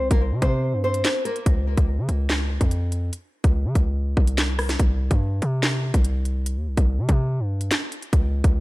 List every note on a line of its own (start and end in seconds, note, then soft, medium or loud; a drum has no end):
0.00 0.10 C2 medium
0.11 0.33 C2 loud
0.11 0.21 A#3 medium
0.11 0.20 A#4 medium
0.11 kick medium
0.11 closed hi-hat medium
0.32 0.41 C3 loud
0.42 0.75 C3 loud
0.42 0.82 C4 medium
0.42 0.81 C5 medium
0.42 kick medium
0.42 closed hi-hat medium
0.73 1.03 G2 loud
0.84 1.23 C4 medium
0.84 1.23 C5 medium
0.94 closed hi-hat medium
1.05 snare loud
1.05 clap medium
1.05 closed hi-hat medium
1.25 1.45 A#3 medium
1.25 1.44 A#4 medium
1.25 closed hi-hat medium
1.36 closed hi-hat medium
1.46 1.76 C#2 loud
1.46 kick loud
1.46 closed hi-hat loud
1.77 2.00 C#2 loud
1.77 kick loud
1.77 closed hi-hat medium
1.98 2.08 C#3 loud
2.09 2.59 C#2 loud
2.09 closed hi-hat medium
2.30 snare loud
2.30 clap medium
2.61 3.11 F2 loud
2.61 kick medium
2.61 closed hi-hat medium
2.71 closed hi-hat medium
2.92 closed hi-hat medium
3.13 closed hi-hat medium
3.44 3.66 C#2 loud
3.44 kick loud
3.44 closed hi-hat medium
3.65 3.75 C#3 loud
3.75 4.15 C#2 loud
3.75 kick medium
3.75 closed hi-hat medium
4.17 4.77 C2 loud
4.17 kick loud
4.27 closed hi-hat medium
4.38 snare loud
4.38 clap medium
4.38 closed hi-hat medium
4.59 cross-stick loud
4.59 open hi-hat medium
4.69 snare medium
4.69 closed hi-hat medium
4.80 5.10 C2 loud
4.80 kick loud
4.80 closed hi-hat medium
5.11 5.41 G2 loud
5.11 kick loud
5.11 closed hi-hat medium
5.42 5.92 C3 loud
5.42 closed hi-hat medium
5.63 snare loud
5.63 clap medium
5.94 6.58 C2 loud
5.94 kick medium
5.94 closed hi-hat medium
6.04 closed hi-hat medium
6.25 closed hi-hat medium
6.46 closed hi-hat medium
6.57 6.68 D#2 loud
6.67 6.77 C2 loud
6.77 7.00 C2 loud
6.77 kick medium
6.77 closed hi-hat medium
6.98 7.08 C3 loud
7.09 7.41 C3 loud
7.09 kick medium
7.09 closed hi-hat medium
7.40 7.70 G2 loud
7.61 closed hi-hat medium
7.71 snare loud
7.71 clap medium
7.71 closed hi-hat medium
7.92 closed hi-hat medium
8.02 closed hi-hat medium
8.13 8.43 C#2 loud
8.13 kick loud
8.13 closed hi-hat medium
8.44 8.60 C#2 loud
8.44 kick loud
8.44 closed hi-hat medium